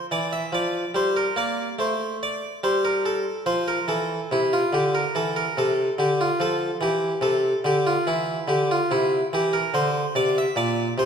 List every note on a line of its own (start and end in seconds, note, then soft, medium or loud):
0.11 0.42 E3 medium
0.11 0.33 D5 medium
0.33 0.53 E5 medium
0.52 0.83 F3 medium
0.52 0.90 D5 medium
0.94 1.25 G3 medium
0.94 1.16 C5 medium
1.17 1.37 A#4 medium
1.36 1.67 A#3 soft
1.36 1.73 D5 medium
1.79 2.40 A3 medium
1.79 2.16 C5 medium
2.23 2.58 D5 medium
2.64 3.24 G3 medium
2.64 2.85 C5 medium
2.85 3.06 A#4 medium
3.06 3.42 A4 medium
3.46 3.77 F3 medium
3.46 3.68 C5 medium
3.68 3.89 A#4 medium
3.88 4.19 E3 medium
3.88 4.31 A4 medium
4.32 4.61 C3 medium
4.32 4.52 E4 medium
4.53 4.73 F4 medium
4.73 5.02 D3 medium
4.73 4.94 G4 medium
4.95 5.15 A#4 medium
5.15 5.45 E3 medium
5.15 5.35 A4 medium
5.36 5.56 A#4 medium
5.57 5.87 C3 medium
5.57 5.92 A4 medium
5.98 6.28 D3 medium
5.98 6.19 G4 medium
6.21 6.40 F4 medium
6.40 6.69 F3 medium
6.40 6.75 A4 medium
6.81 7.10 E3 medium
6.81 7.17 G4 medium
7.21 7.51 C3 medium
7.21 7.58 A4 medium
7.64 7.94 D3 medium
7.64 7.86 G4 medium
7.87 8.06 F4 medium
8.07 8.37 E3 medium
8.07 8.48 E4 medium
8.48 8.77 D3 medium
8.48 8.69 G4 medium
8.71 8.90 F4 medium
8.91 9.20 C3 medium
8.91 9.26 E4 medium
9.33 9.62 E3 medium
9.33 9.53 G4 medium
9.53 9.73 A#4 medium
9.74 10.03 D3 medium
9.74 10.15 C5 medium
10.15 10.45 C3 medium
10.15 10.36 D5 loud
10.38 10.57 E5 medium
10.56 10.86 A#2 medium
10.56 10.92 D5 medium
10.98 11.05 C3 medium
10.98 11.05 C5 medium